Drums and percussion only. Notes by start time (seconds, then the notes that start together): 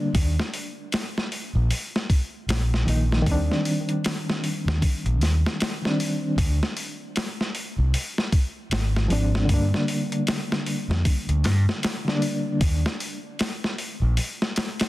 0.15 kick, open hi-hat
0.40 snare
0.54 open hi-hat
0.92 snare, open hi-hat
1.18 snare
1.32 open hi-hat
1.71 open hi-hat
1.96 snare
2.10 kick, open hi-hat
2.49 snare, open hi-hat
2.74 snare
2.88 open hi-hat
3.12 snare
3.26 kick, open hi-hat
3.52 snare
3.65 open hi-hat
3.89 closed hi-hat
4.04 snare, open hi-hat
4.30 snare
4.44 open hi-hat
4.68 snare
4.82 kick, open hi-hat
5.06 closed hi-hat
5.21 snare, open hi-hat
5.46 snare
5.60 snare, open hi-hat
5.85 snare
6.00 open hi-hat
6.38 kick, open hi-hat
6.63 snare
6.77 open hi-hat
7.16 snare, open hi-hat
7.41 snare
7.55 open hi-hat
7.94 open hi-hat
8.18 snare
8.32 kick, open hi-hat
8.71 snare, open hi-hat
8.96 snare
9.10 open hi-hat
9.35 snare
9.49 kick, open hi-hat
9.74 snare
9.88 open hi-hat
10.12 closed hi-hat
10.27 snare, open hi-hat
10.52 snare
10.66 open hi-hat
10.91 snare
11.05 kick, open hi-hat
11.29 closed hi-hat
11.44 snare, open hi-hat
11.69 snare
11.83 snare, open hi-hat
12.08 snare
12.22 open hi-hat
12.61 kick, open hi-hat
12.86 snare
13.00 open hi-hat
13.39 snare, open hi-hat
13.64 snare
13.78 open hi-hat
14.17 open hi-hat
14.42 snare
14.56 snare, open hi-hat
14.80 snare, open hi-hat